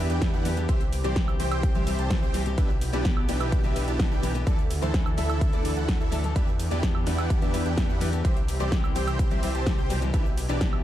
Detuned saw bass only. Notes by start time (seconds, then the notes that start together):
0.10 E2
0.33 E2
0.69 C2
1.04 C2
1.40 C2
1.75 C2
1.99 C2
2.22 C2
2.58 B1
2.93 B1
3.29 B1
3.64 B1
3.88 B1
4.11 B1
4.47 D2
4.82 D2
5.18 D2
5.53 D2
5.77 D2
6.01 D2
6.36 E2
6.71 E2
7.07 E2
7.42 E2
7.66 E2
7.89 E2
8.25 C2
8.60 C2
8.96 C2
9.31 C2
9.55 C2
9.78 C2
10.14 B1
10.49 B1